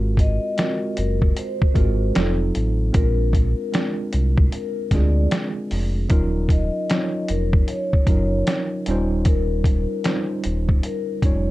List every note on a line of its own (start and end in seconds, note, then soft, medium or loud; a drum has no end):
0.00 0.39 G#1 loud
0.00 0.37 G#3 medium
0.00 0.37 C4 medium
0.00 0.37 F4 medium
0.00 0.38 F#4 medium
0.00 0.38 A#4 loud
0.17 0.94 D#5 medium
0.17 kick medium
0.17 closed hi-hat medium
0.57 1.54 G#3 medium
0.57 1.54 C4 medium
0.57 1.55 F4 medium
0.57 1.55 F#4 medium
0.57 1.55 A#4 medium
0.57 snare loud
0.57 closed hi-hat medium
0.97 1.34 F#1 medium
0.97 1.34 A#4 medium
0.97 closed hi-hat medium
1.22 kick loud
1.37 1.73 C5 medium
1.37 closed hi-hat medium
1.62 kick loud
1.74 2.12 G#1 medium
1.74 2.14 G#3 medium
1.74 2.15 C4 medium
1.74 2.15 F4 medium
1.74 2.15 F#4 medium
1.74 2.16 A#4 medium
1.74 2.37 C5 medium
1.74 kick medium
1.74 closed hi-hat medium
2.15 2.52 F1 loud
2.15 2.84 F#3 medium
2.15 2.84 C4 medium
2.15 2.84 D#4 medium
2.15 snare loud
2.15 closed hi-hat medium
2.20 2.85 F4 medium
2.20 2.85 A4 medium
2.55 2.92 A1 medium
2.55 closed hi-hat medium
2.92 3.55 A#1 loud
2.92 3.60 G#3 medium
2.92 3.60 C4 medium
2.92 3.02 C#4 soft
2.92 3.61 F4 medium
2.92 3.61 A#4 medium
2.92 3.95 A#4 loud
2.92 kick loud
2.92 closed hi-hat medium
3.00 3.64 D4 medium
3.33 kick medium
3.33 closed hi-hat medium
3.72 4.70 G#3 medium
3.72 4.70 C4 medium
3.72 4.70 D4 medium
3.72 4.71 F4 medium
3.72 4.71 A#4 medium
3.72 snare loud
3.72 closed hi-hat medium
4.13 4.49 C2 medium
4.13 closed hi-hat medium
4.38 kick loud
4.52 4.88 A#4 medium
4.52 closed hi-hat medium
4.91 5.28 D2 medium
4.91 5.89 G#3 medium
4.91 5.89 C4 medium
4.91 5.90 D4 medium
4.91 5.90 F4 medium
4.91 5.28 D5 medium
4.91 kick medium
4.91 snare soft
4.91 closed hi-hat medium
4.95 5.90 G#4 medium
5.31 snare loud
5.31 closed hi-hat medium
5.71 6.07 F1 medium
5.71 open hi-hat soft
6.09 6.71 D#1 loud
6.09 6.76 F#3 medium
6.09 6.76 C#4 medium
6.09 6.77 D#4 medium
6.09 6.77 F4 medium
6.09 6.77 A#4 medium
6.09 kick loud
6.09 closed hi-hat medium
6.49 7.25 D#5 medium
6.49 kick medium
6.49 closed hi-hat medium
6.90 7.86 F#3 medium
6.90 7.86 C#4 medium
6.90 7.87 D#4 medium
6.90 7.87 F4 medium
6.90 7.87 C#5 medium
6.90 snare loud
6.90 closed hi-hat medium
7.28 7.65 F1 medium
7.28 7.65 A#4 medium
7.28 closed hi-hat medium
7.53 kick loud
7.68 8.04 C#5 medium
7.68 closed hi-hat medium
7.93 kick loud
8.07 8.43 F#1 medium
8.07 8.86 F#3 medium
8.07 8.87 C#4 medium
8.07 8.87 D#4 medium
8.07 8.87 F4 medium
8.07 8.88 A#4 medium
8.07 kick medium
8.07 closed hi-hat medium
8.47 snare loud
8.47 closed hi-hat medium
8.86 9.87 D#1 medium
8.86 9.86 G3 loud
8.86 9.86 C#4 medium
8.86 9.87 D#4 medium
8.86 9.87 F4 medium
8.86 closed hi-hat medium
8.91 9.87 C5 loud
9.25 10.26 A#4 loud
9.25 kick loud
9.25 closed hi-hat medium
9.64 kick medium
9.64 closed hi-hat medium
10.04 11.01 G3 medium
10.04 11.02 C#4 medium
10.04 11.02 D#4 medium
10.04 11.02 F4 medium
10.04 11.03 C5 medium
10.04 snare loud
10.04 closed hi-hat medium
10.44 10.81 D#1 medium
10.44 closed hi-hat medium
10.69 kick medium
10.83 11.20 A#4 medium
10.83 closed hi-hat medium
11.22 11.51 F1 medium
11.22 11.51 G3 medium
11.22 11.51 C#4 medium
11.22 11.51 D#4 medium
11.22 11.51 F4 medium
11.22 11.51 C#5 medium
11.22 kick medium
11.22 closed hi-hat medium